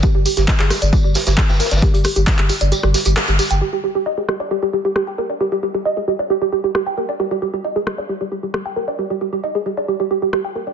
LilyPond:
<<
  \new Staff \with { instrumentName = "Synth arpeggio sound" } { \time 4/4 \key g \phrygian \tempo 4 = 134 g'16 g'16 g'16 g'16 r16 aes'16 g'16 d''16 g'16 g'16 g'16 g'16 g'16 g''16 bes'16 d''16 | g'16 g'16 g'16 g'16 ees''16 aes'16 g'16 d''16 g'16 g'16 g'16 g'16 g'16 g'16 g'16 g''16 | g'16 g'16 g'16 g'16 ees''16 aes'16 g'16 d''16 g'16 g'16 g'16 g'16 g'16 g''16 bes'16 d''16 | g'16 g'16 g'16 g'16 ees''16 aes'16 g'16 d''16 g'16 g'16 g'16 g'16 g'16 g''16 bes'16 d''16 |
g'16 g'16 g'16 g'16 ees''16 aes'16 g'16 d''16 g'16 g'16 g'16 g'16 g'16 g''16 bes'16 d''16 | g'16 g'16 g'16 g'16 ees''16 aes'16 g'16 d''16 g'16 g'16 g'16 g'16 g'16 g''16 bes'16 d''16 | }
  \new Staff \with { instrumentName = "Sub bass" } { \clef bass \time 4/4 \key g \phrygian r16 g,,16 r16 g,,16 r16 g,,16 r16 g,,16 r16 g,,16 r16 g,,16 r16 g,,16 r16 g,,16 | r16 g,,16 r16 g,,16 r16 g,,16 r16 g,,16 r16 g,,16 r16 g,,16 r16 g,,16 r16 g,,16 | r1 | r1 |
r1 | r1 | }
  \new DrumStaff \with { instrumentName = "Drums" } \drummode { \time 4/4 <hh bd tamb>8 <hho tamb>16 <hh sn tamb>16 <hc hh bd sn tamb>16 <hc hh>16 <hho ss sn tamb>16 <hh tamb>16 <hh bd tamb>8 <hho sn tamb>16 <hh sn tamb>16 <hc hh bd ss sn tamb>16 <sn tamb>16 <hho sn tamb>32 <sn tamb>32 <hh sn tamb>32 <sn tamb>32 | <hh bd tamb>16 hh16 <hho ss tamb>16 <hh tamb>16 <hc hh bd sn tamb>16 hc16 <hho tamb>16 <hh tamb>16 <hh tamb>16 ss16 <hho sn tamb>16 <hh tamb>16 <hc hh ss sn tamb>16 hh16 <hho tamb>16 <hh tamb>16 | r4 r8 ss8 r4 ss4 | r4 r4 r4 ss4 |
r4 r8 ss8 r4 ss4 | r4 r4 r4 ss4 | }
>>